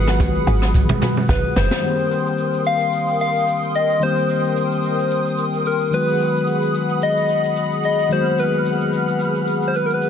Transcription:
Already playing: log drum bass G#1, tine electric piano D#3 F#3 G#3 B3 F4 F#4, analog synth pad G#4 F#5 B5 D#6, soft synth lead B4
0.07 synth stab F#4 G#4 B4, cross-stick, shaker
0.20 kick, hi-hat pedal, high bongo, low conga, shaker
0.35 shaker
0.47 log drum bass G#1, synth stab F#4 G#4 B4, open hi-hat, high bongo, shaker
0.62 cross-stick, shaker
0.74 kick, hi-hat pedal, low conga, shaker
0.89 mid tom, low bongo, shaker
1.01 synth stab F#4 G#4 B4, cross-stick, mid tom, open hi-hat, shaker
1.17 low bongo, shaker
1.29 log drum bass G1, soft synth lead B4, kick, snare, high bongo
1.56 log drum bass F#1, synth stab F#4 G#4 B4, soft synth lead C5, snare, high bongo
1.71 snare
1.81 tine electric piano D#3 G3 A#3 C4, analog synth pad A#4 G5 C6 D#6, shaker
1.86 tine electric piano G4
1.99 shaker
2.11 shaker
2.26 shaker
2.38 shaker
2.53 shaker
2.65 soft synth lead F5, shaker
2.81 shaker
2.93 shaker
3.08 shaker
3.20 soft synth lead F5, shaker
3.35 shaker
3.47 shaker
3.62 shaker
3.75 soft synth lead D#5, shaker
3.89 shaker
4.00 tine electric piano D#3 G3 A#3 C4, soft synth lead C5, shaker
4.04 tine electric piano G4
4.17 shaker
4.29 shaker
4.44 shaker
4.56 shaker
4.71 shaker
4.83 shaker
4.99 shaker
5.11 shaker
5.26 shaker
5.38 shaker
5.53 shaker
5.65 soft synth lead A#4, shaker
5.80 shaker
5.91 tine electric piano D#3 F#3 G#3 B3, analog synth pad G#4 F#5 B5, soft synth lead B4, shaker
5.95 tine electric piano F#4
6.08 shaker
6.20 shaker
6.35 shaker
6.47 shaker
6.62 shaker
6.74 shaker
6.90 shaker
7.01 soft synth lead D#5, shaker
7.17 shaker
7.29 shaker
7.44 shaker
7.56 shaker
7.71 shaker
7.84 soft synth lead D#5, shaker
7.99 shaker
8.09 tine electric piano D#3 F#3 G#3 A#3, soft synth lead C5, analog synth pad F6, shaker
8.13 tine electric piano F#4
8.19 tine electric piano B3
8.26 shaker
8.38 soft synth lead B4, shaker
8.53 shaker
8.65 shaker
8.80 shaker
8.93 shaker
9.08 shaker
9.20 shaker
9.35 shaker
9.47 shaker
9.62 shaker
9.68 soft synth lead C5
9.74 soft synth lead B4, shaker
9.86 soft synth lead A#4, shaker
9.94 soft synth lead B4
10.02 soft synth lead B4, shaker

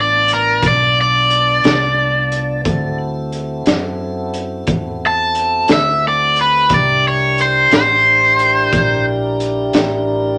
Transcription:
Already playing: fingered electric bass A1, tonewheel organ B3 D4 F4 A5
0.01 overdriven electric guitar D5
0.28 closed hi-hat
0.33 overdriven electric guitar A#4
0.62 fingered electric bass B1, kick, closed hi-hat
0.68 overdriven electric guitar D5
1.01 overdriven electric guitar D5
1.30 closed hi-hat
1.64 fingered electric bass C2, snare, closed hi-hat
2.32 closed hi-hat
2.64 fingered electric bass D2, tonewheel organ C4 E4 F#4 A4, kick, closed hi-hat
3.32 closed hi-hat
3.66 fingered electric bass F#2, snare, closed hi-hat
4.34 closed hi-hat
4.67 fingered electric bass E2, kick, closed hi-hat
5.07 overdriven electric guitar A5
5.35 closed hi-hat
5.68 fingered electric bass D2, snare, closed hi-hat
5.73 overdriven electric guitar E5
6.08 overdriven electric guitar D5
6.36 closed hi-hat
6.41 overdriven electric guitar B4
6.69 fingered electric bass C2, tonewheel organ D4 E4 G4 A#4, kick, closed hi-hat
6.74 overdriven electric guitar D5
7.08 overdriven electric guitar C#5
7.38 overdriven electric guitar C5, closed hi-hat
7.71 fingered electric bass A1, snare, closed hi-hat
7.76 overdriven electric guitar C5
8.39 closed hi-hat
8.73 fingered electric bass A#1, kick, closed hi-hat
9.40 closed hi-hat
9.73 fingered electric bass A1, snare, closed hi-hat

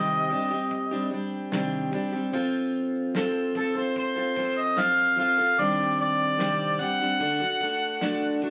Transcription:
Already playing: steel-string acoustic guitar C3 D#3 G3 C4 G4, harmonica D#5
0.10 shaker
0.30 steel-string acoustic guitar G3 C4 D4 G4, kick, shaker
0.50 steel-string acoustic guitar G3 C4 G4, shaker
0.71 kick, shaker
0.91 steel-string acoustic guitar G3 C4 D4 G4, shaker
1.11 steel-string acoustic guitar G3 C4 D4 G4
1.32 shaker
1.52 steel-string acoustic guitar C3 D#3 G3 C4 D4 G4, snare, shaker
1.73 shaker
1.92 steel-string acoustic guitar G3 C4 D4 G4, kick
2.12 steel-string acoustic guitar G3 C4 D4 G4, shaker
2.33 steel-string acoustic guitar F3 C4 F4 A4, kick, shaker
2.54 shaker
2.75 shaker
2.95 shaker
3.14 steel-string acoustic guitar F3 C4 F4 A4, snare, shaker
3.35 shaker
3.55 steel-string acoustic guitar F3 C4 F4 A4, harmonica A4, kick
3.75 steel-string acoustic guitar C4 F4 A4, harmonica C5, shaker
3.96 harmonica C5, kick, shaker
4.16 steel-string acoustic guitar C4 F4 A4, shaker
4.36 steel-string acoustic guitar F3 C4 F4 A4, kick
4.56 harmonica D#5, shaker
4.77 steel-string acoustic guitar F3 C4 F4 A4, harmonica F5, snare, shaker
4.97 shaker
5.17 steel-string acoustic guitar F3 C4 F4 A4, harmonica F5, shaker
5.37 steel-string acoustic guitar C4 F4 A4, shaker
5.58 steel-string acoustic guitar C3 D#3 G3 C4 D4 G4, harmonica D5, shaker
5.78 shaker
6.00 harmonica D5
6.19 shaker
6.38 steel-string acoustic guitar C3 D#3 G3 C4 D4 G4, snare, shaker
6.59 shaker
6.79 steel-string acoustic guitar G3 C4 D4 G4, harmonica F#5, kick
6.99 steel-string acoustic guitar C4 D4 G4, shaker
7.04 steel-string acoustic guitar G3
7.20 steel-string acoustic guitar D3 A3 D4 F#4 A4, kick, shaker
7.40 steel-string acoustic guitar D4 F#4 A4, snare, shaker
7.60 steel-string acoustic guitar A3 D4 F#4 A4, kick
7.81 shaker
8.01 steel-string acoustic guitar D3 A3 D4 F#4 A4, snare, shaker
8.22 shaker
8.42 steel-string acoustic guitar A3 D4 F#4 A4, kick

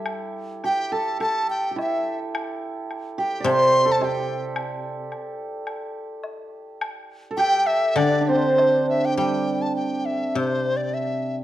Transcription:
Already playing: guzheng G3, hammered dulcimer E4 G4 A4
0.06 high woodblock
0.64 hammered dulcimer G4, dizi G5, high woodblock
0.92 hammered dulcimer A4, dizi A5
1.20 hammered dulcimer A4, dizi A5, high woodblock
1.50 dizi G5
1.71 hammered dulcimer G4
1.76 hammered dulcimer E4, low woodblock
1.81 dizi E5
2.35 high woodblock
2.91 high woodblock
3.18 hammered dulcimer G4, dizi G5
3.40 guzheng C3, hammered dulcimer C5 D5
3.46 high woodblock
3.50 dizi C6
3.86 hammered dulcimer A4
3.92 dizi A5
4.01 hammered dulcimer G4, dizi G5, low woodblock
4.56 high woodblock
5.12 high woodblock
5.67 high woodblock
6.24 low woodblock
6.81 high woodblock
7.31 hammered dulcimer A4
7.37 hammered dulcimer G4, dizi G5, high woodblock
7.67 dizi E5
7.96 guzheng D3, hammered dulcimer D4, dizi D5, high woodblock
8.21 hammered dulcimer D4, dizi D5
8.28 hammered dulcimer C4, dizi C5
8.58 low woodblock
8.89 dizi E5
9.05 dizi G5
9.17 guzheng G3, dizi G5
9.62 dizi A5
9.76 dizi G5
10.05 dizi E5
10.35 guzheng C3, dizi C5
10.77 dizi D5
10.94 dizi E5

